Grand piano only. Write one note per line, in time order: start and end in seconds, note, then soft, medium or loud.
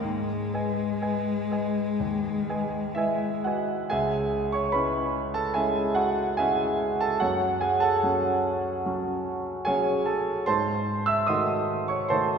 0.03 0.51 G#2 soft
0.54 0.98 B4 soft
0.54 0.98 D#5 soft
0.54 0.98 G#5 soft
1.02 1.46 B4 soft
1.02 1.47 D#5 soft
1.02 1.47 G#5 soft
1.51 1.96 B4 soft
1.51 1.96 D#5 soft
1.51 1.97 G#5 soft
2.00 2.47 D#2 soft
2.49 2.94 B4 soft
2.49 2.94 D#5 soft
2.49 2.94 G#5 soft
2.95 3.42 E4 soft
2.95 3.42 B4 soft
2.95 3.42 D#5 soft
2.95 3.45 E5 medium
2.95 3.42 G#5 soft
3.44 3.88 F#4 soft
3.44 3.88 B4 soft
3.44 3.88 D#5 soft
3.44 3.91 F#5 soft
3.44 3.88 G#5 soft
3.90 4.72 C#2 soft
3.90 4.50 G#4 soft
3.90 4.50 E5 soft
3.90 4.53 G#5 medium
4.52 4.73 C#5 soft
4.52 4.74 C#6 medium
4.72 5.52 G#3 soft
4.72 5.52 C#4 soft
4.72 5.52 E4 soft
4.72 5.31 B4 soft
4.72 5.35 B5 medium
5.34 5.55 A4 soft
5.34 5.56 A5 medium
5.54 6.35 G#3 soft
5.54 6.35 C#4 soft
5.54 6.36 E4 soft
5.54 5.94 G#4 soft
5.54 5.94 E5 soft
5.54 5.96 G#5 soft
5.95 6.35 F#4 soft
5.95 6.38 F#5 medium
6.37 7.18 G#3 soft
6.37 7.18 C#4 soft
6.37 7.18 E4 soft
6.37 6.97 G#4 soft
6.37 6.97 E5 soft
6.37 7.00 G#5 medium
7.00 7.20 A4 soft
7.00 7.21 A5 medium
7.20 8.00 F#2 soft
7.20 7.59 F#4 soft
7.20 7.59 C#5 soft
7.20 7.61 F#5 medium
7.61 7.81 G#4 soft
7.61 7.82 G#5 medium
7.80 9.21 A4 soft
7.80 9.21 F#5 soft
7.80 9.24 A5 medium
8.03 8.81 F#3 soft
8.03 8.81 C#4 soft
8.03 8.81 F#4 soft
8.86 9.63 F#3 soft
8.86 9.63 C#4 soft
8.86 9.63 F#4 soft
9.65 10.44 F#3 soft
9.65 10.44 C#4 soft
9.65 10.44 F#4 soft
9.65 10.04 G#4 soft
9.65 10.04 C#5 soft
9.65 10.06 G#5 medium
10.06 10.44 A4 soft
10.06 10.45 A5 soft
10.46 11.27 G#2 soft
10.46 11.05 C5 soft
10.46 11.04 A5 soft
10.46 11.08 C6 medium
11.06 11.27 E5 medium
11.06 11.28 E6 medium
11.27 12.07 D#3 soft
11.27 12.07 A3 soft
11.27 12.07 F#4 soft
11.27 11.86 D#5 soft
11.27 11.86 C6 soft
11.27 11.89 D#6 medium
11.88 12.09 C#5 soft
11.88 12.10 C#6 medium
12.09 12.38 D#3 soft
12.09 12.38 A3 soft
12.09 12.38 F#4 soft
12.09 12.38 C5 soft
12.09 12.38 A5 soft
12.09 12.38 C6 medium